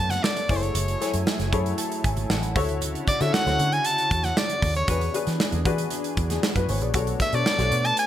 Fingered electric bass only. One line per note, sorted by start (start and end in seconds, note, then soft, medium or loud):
0.00 0.17 F#2 medium
0.49 0.69 F#1 loud
0.75 0.94 F#1 medium
1.14 1.24 F#2 medium
1.39 1.49 F#1 medium
1.53 1.72 F#2 medium
2.04 2.24 G#1 medium
2.30 2.56 A1 medium
2.56 2.95 D2 loud
3.21 3.30 D3 medium
3.46 3.56 D2 medium
3.59 3.79 D3 loud
4.11 4.30 E2 medium
4.62 4.82 D#2 medium
4.88 5.08 E2 loud
5.27 5.37 E3 medium
5.52 5.62 E2 medium
5.65 5.85 E3 medium
6.17 6.37 E2 medium
6.56 6.65 F#2 medium
6.68 6.82 G#1 medium
6.82 6.91 A#1 medium
6.94 7.14 B1 loud
7.33 7.43 B2 medium
7.59 7.68 B1 medium
7.72 7.91 B2 medium